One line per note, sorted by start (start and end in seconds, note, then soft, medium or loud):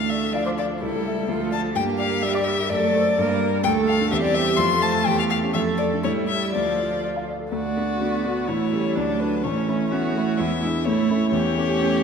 0.00 0.79 D2 soft
0.00 0.17 A3 soft
0.00 0.35 A3 soft
0.00 0.77 D4 soft
0.00 0.11 F5 medium
0.09 0.29 D5 soft
0.09 0.35 E5 medium
0.23 0.41 A4 soft
0.33 0.82 F3 soft
0.33 0.45 D5 medium
0.33 0.53 F5 soft
0.46 0.50 C5 medium
0.46 0.65 D6 soft
0.58 0.66 D5 medium
0.58 0.77 F5 soft
0.71 0.81 A4 soft
0.81 1.27 C#2 soft
0.81 1.30 G3 soft
0.81 1.26 E4 soft
0.81 1.51 A4 medium
0.95 1.13 A3 soft
1.07 1.25 E5 soft
1.17 1.29 A4 soft
1.27 1.74 D2 medium
1.27 1.75 F3 soft
1.27 1.74 F4 medium
1.40 1.59 A3 soft
1.51 1.70 D5 soft
1.51 1.60 A5 medium
1.63 1.75 A4 soft
1.74 2.67 G2 medium
1.74 2.24 A#3 medium
1.74 2.68 G4 medium
1.74 1.84 G5 medium
1.87 2.06 A#3 soft
1.98 2.18 D5 soft
1.98 2.24 F5 medium
2.09 2.29 A#4 soft
2.22 2.72 G3 medium
2.22 2.41 D5 medium
2.22 2.35 E5 medium
2.34 2.46 D5 medium
2.34 2.54 D6 soft
2.44 2.65 D5 soft
2.44 2.71 E5 medium
2.58 2.70 A#4 soft
2.69 3.16 F#2 medium
2.69 2.93 A3 medium
2.69 3.16 A4 medium
2.69 3.40 D5 medium
2.84 3.02 A3 soft
2.93 3.01 A3 medium
2.93 3.13 C5 soft
3.06 3.18 A4 medium
3.17 3.63 G2 medium
3.17 3.63 A#3 medium
3.17 3.63 A#4 medium
3.29 3.48 G3 soft
3.41 3.60 A#4 soft
3.52 3.64 G4 soft
3.63 4.10 D2 medium
3.63 4.13 A3 medium
3.63 4.10 A4 medium
3.63 3.72 G5 medium
3.76 3.95 A3 soft
3.88 4.07 A4 medium
3.88 4.11 F5 medium
4.00 4.12 D4 medium
4.10 4.58 E2 medium
4.10 4.60 C4 medium
4.10 4.60 G4 medium
4.10 4.16 E5 medium
4.23 4.43 G3 soft
4.23 4.36 D5 medium
4.34 4.54 C5 soft
4.34 4.59 E5 medium
4.47 4.59 G4 soft
4.57 5.05 F2 medium
4.57 5.54 A3 medium
4.57 5.09 F4 medium
4.57 4.84 C6 medium
4.70 4.90 A3 soft
4.82 5.02 C5 soft
4.82 5.08 A5 medium
4.94 5.07 A4 medium
5.06 5.53 E2 medium
5.06 5.54 G4 medium
5.06 5.18 G5 medium
5.19 5.38 A3 soft
5.19 5.24 F5 medium
5.30 5.50 A4 soft
5.30 5.38 F5 medium
5.43 5.55 C#4 soft
5.54 6.02 F2 medium
5.54 6.04 A3 medium
5.54 6.02 A4 medium
5.54 5.62 E5 medium
5.67 5.86 A3 soft
5.78 5.99 A4 soft
5.78 5.86 D5 medium
5.93 6.04 D4 soft
6.03 6.52 A2 medium
6.03 6.53 G3 medium
6.03 6.54 E4 medium
6.03 6.12 C#5 medium
6.17 6.36 A3 soft
6.28 6.49 G4 soft
6.28 6.52 E5 medium
6.42 6.54 A4 soft
6.52 7.50 D2 soft
6.52 7.31 F3 soft
6.52 7.27 F4 soft
6.52 7.01 D5 medium
6.68 6.86 A3 soft
6.79 6.98 F4 soft
6.93 7.11 A4 soft
7.04 7.23 D5 soft
7.16 7.35 F5 soft
7.28 7.47 D5 soft
7.39 7.52 A4 soft
7.52 7.75 D2 medium
7.52 7.60 A3 soft
7.52 8.49 F#4 medium
7.52 8.49 D5 medium
7.76 7.97 A3 soft
7.76 7.85 B3 medium
7.76 7.98 D4 soft
7.76 7.98 F#4 soft
7.99 8.22 A3 soft
7.99 8.50 B3 medium
7.99 8.22 D4 soft
7.99 8.22 F#4 soft
8.25 8.46 A3 soft
8.25 8.46 D4 soft
8.25 8.47 F#4 soft
8.47 8.71 A1 medium
8.47 8.74 A3 medium
8.47 8.97 E4 medium
8.47 8.97 C#5 medium
8.72 8.99 G3 medium
8.72 8.94 A3 soft
8.72 8.94 C#4 soft
8.72 8.94 G4 soft
8.95 9.19 D2 medium
8.95 9.44 F#3 medium
8.95 9.42 D4 medium
8.95 9.21 D5 medium
9.20 9.42 A3 soft
9.20 9.42 D4 soft
9.20 9.42 F#4 soft
9.20 9.46 B4 medium
9.43 9.67 A1 medium
9.43 9.66 A3 medium
9.43 9.93 C#4 medium
9.43 9.90 C#5 medium
9.67 9.75 A3 medium
9.67 9.89 A3 soft
9.67 9.89 C#4 soft
9.67 9.89 E4 soft
9.90 10.13 A3 soft
9.90 10.15 B3 medium
9.90 10.13 C#4 soft
9.90 10.13 E4 medium
9.90 10.40 F#4 medium
9.90 10.39 C#5 medium
10.13 10.39 A3 medium
10.13 10.37 A3 soft
10.13 10.37 C#4 soft
10.18 10.38 E4 soft
10.37 10.62 E2 medium
10.37 10.60 G#3 medium
10.37 10.86 E4 medium
10.37 10.86 E5 medium
10.61 10.69 G#3 medium
10.61 10.84 G#3 soft
10.61 10.85 D4 soft
10.61 10.85 E4 soft
10.85 11.09 A2 medium
10.85 11.30 A3 medium
10.85 11.32 E4 medium
10.85 11.31 C#5 medium
11.10 11.31 A3 soft
11.10 11.31 C#4 medium
11.10 11.31 E4 medium
11.30 11.55 E2 medium
11.30 12.03 A3 medium
11.30 12.03 G4 medium
11.30 12.03 C#5 medium
11.57 11.78 A3 medium
11.57 11.79 C#4 medium
11.57 11.79 G4 medium
11.81 12.02 A3 medium
11.81 12.02 C#4 medium
11.81 12.03 G4 medium